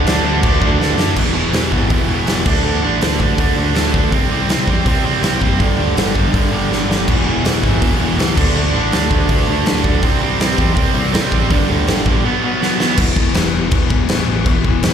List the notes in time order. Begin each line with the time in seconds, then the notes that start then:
0.06 D2 D3 A3 D4, snare, crash
0.24 D2 D3 A3 D4
0.43 D2 D3 A3 D4, kick, crash
0.61 D2 D3 A3 D4, kick
0.79 D2 D3 A3 D4, snare
0.97 F#2 D3 A3 D4, snare
1.16 E1 E2 B2 E3, kick, crash
1.34 E1 E2 B2 E3
1.52 E1 E2 B2 E3, snare, open hi-hat
1.71 G#1 E2 B2 E3, kick
1.90 E1 E2 B2 E3, kick, open hi-hat
2.07 E1 E2 B2 E3
2.26 E1 E2 B2 E3, snare, open hi-hat
2.45 D2 D3 A3 D4, kick, crash
2.64 D2 D3 A3 D4
2.82 A1 D3 A3 D4
3.00 D2 D3 A3 D4, snare, open hi-hat
3.20 D2 D3 A3 D4, kick
3.38 D2 D3 A3 D4, kick, open hi-hat
3.55 D2 D3 A3 D4
3.75 D2 D3 A3 D4, snare, open hi-hat
3.93 D2 D3 A3 D4, kick
4.11 C2 C3 G3 C4, kick, open hi-hat
4.30 C2 C3 G3 C4
4.47 C2 C3 G3 C4, snare, open hi-hat
4.66 E2 C3 G3 C4, kick
4.85 C2 C3 G3 C4, kick, open hi-hat
5.03 C2 C3 G3 C4
5.21 C2 C3 G3 C4, snare, open hi-hat
5.39 F#1 C3 G3 C4, kick
5.58 G1 G2 D3 G3, kick, open hi-hat
5.76 D2 G2 D3 G3
5.95 G1 G2 D3 G3, snare, open hi-hat
6.14 G1 G2 D3 G3, kick
6.33 G1 G2 D3 G3, kick, open hi-hat
6.51 G1 G2 D3 G3
6.70 G1 G2 D3 G3, snare
6.88 G1 G2 D3 G3, snare
7.07 E1 E2 B2 E3, kick, crash
7.25 E1 E2 B2 E3
7.43 E1 E2 B2 E3, snare, open hi-hat
7.63 G#1 E2 B2 E3, kick
7.81 E1 E2 B2 E3, kick, open hi-hat
7.99 E1 E2 B2 E3
8.17 C#2 E2 B2 E3, snare, open hi-hat
8.36 D2 D3 A3 D4, kick, crash
8.55 D2 D3 A3 D4
8.73 A1 D3 A3 D4
8.91 D2 D3 A3 D4, snare, open hi-hat
9.10 D2 D3 A3 D4, kick
9.29 D2 D3 A3 D4, kick, open hi-hat
9.47 D2 D3 A3 D4
9.65 D2 D3 A3 D4, snare, open hi-hat
9.84 D2 D3 A3 D4, kick
10.02 C2 C3 G3 C4, kick, open hi-hat
10.21 C2 C3 G3 C4
10.39 C2 C3 G3 C4, snare, open hi-hat
10.57 E2 C3 G3 C4, kick
10.75 C2 C3 G3 C4, kick, open hi-hat
10.94 C2 C3 G3 C4
11.13 C2 C3 G3 C4, snare, open hi-hat
11.32 A1 C3 G3 C4, kick
11.51 G1 G2 D3 G3, kick, open hi-hat
11.68 D2 G2 D3 G3
11.87 G1 G2 D3 G3, snare, open hi-hat
12.06 A#1 G2 D3 G3, kick
12.24 B2 F#3 B3
12.42 B2 F#3 B3
12.61 B2 F#3 B3, snare
12.80 B2 F#3 B3, snare
12.97 E1 E2 B2 E3, kick, crash
13.16 E1 E2 B2 E3, kick
13.34 E1 E2 B2 E3, snare, crash
13.53 E1 E2 B2 E3
13.71 E1 E2 B2 E3, kick, crash
13.90 E1 E2 B2 E3, kick
14.08 E1 E2 B2 E3, snare, crash
14.27 A1 E2 B2 E3
14.45 E1 E2 B2 E3, kick, crash
14.64 E1 E2 B2 E3, kick
14.82 E1 E2 B2 E3, snare, crash